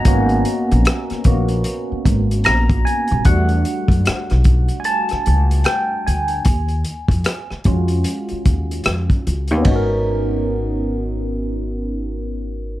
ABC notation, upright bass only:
X:1
M:4/4
L:1/16
Q:"Swing 16ths" 1/4=75
K:G#m
V:1 name="Upright bass" clef=bass
G,,,2 z A,,, z2 A,,,2 z2 G,,,2 A,,,2 z D,,, | E,,2 z F,, z B,,,2 z3 C,,2 z2 =D,,2 | D,,2 z ^E,, z2 E,,2 z2 D,,2 E,, z C,, D,, | G,,,16 |]